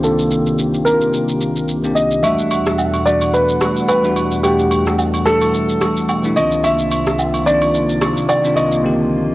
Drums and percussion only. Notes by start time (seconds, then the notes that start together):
0.04 shaker
0.19 shaker
0.31 shaker
0.46 shaker
0.59 shaker
0.74 shaker
0.87 shaker
1.01 shaker
1.14 shaker
1.29 shaker
1.41 shaker
1.56 shaker
1.69 shaker
1.84 shaker
1.96 shaker
2.11 shaker
2.24 high agogo, shaker
2.39 shaker
2.51 high agogo, shaker
2.66 cross-stick, shaker
2.78 low woodblock, shaker
2.94 high agogo, shaker
3.07 shaker
3.21 high agogo, shaker
3.34 shaker
3.49 shaker
3.61 cross-stick, high agogo, shaker
3.77 shaker
3.88 high agogo, low woodblock, shaker
4.04 shaker
4.16 high agogo, shaker
4.32 shaker
4.44 high agogo, shaker
4.59 shaker
4.71 high agogo, shaker
4.87 cross-stick, shaker
4.99 low woodblock, shaker
5.14 high agogo, shaker
5.26 cross-stick, shaker
5.41 high agogo, shaker
5.54 shaker
5.69 shaker
5.81 cross-stick, high agogo, shaker
5.97 shaker
6.09 high agogo, low woodblock, shaker
6.24 shaker
6.37 high agogo, shaker
6.52 shaker
6.64 high agogo, shaker
6.79 shaker
6.91 high agogo, shaker
7.07 cross-stick, shaker
7.19 low woodblock, shaker
7.34 high agogo, shaker
7.47 shaker
7.62 high agogo, shaker
7.74 shaker
7.89 shaker
8.01 cross-stick, high agogo, shaker
8.17 shaker
8.29 high agogo, low woodblock, shaker
8.45 shaker
8.57 high agogo, shaker
8.72 shaker